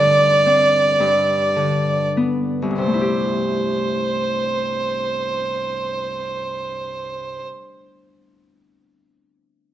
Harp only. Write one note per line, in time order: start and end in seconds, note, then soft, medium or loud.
0.00 0.99 G2 soft
0.00 1.02 D3 soft
0.00 0.96 A3 soft
0.00 0.46 C4 soft
0.46 2.23 C4 soft
1.00 2.69 G2 soft
1.56 2.84 D3 soft
2.17 2.84 B3 soft
2.62 7.34 C2 soft
2.70 7.42 G2 soft
2.78 7.49 C3 soft
2.86 7.58 A3 soft
2.94 7.65 E4 soft
3.01 7.72 G4 soft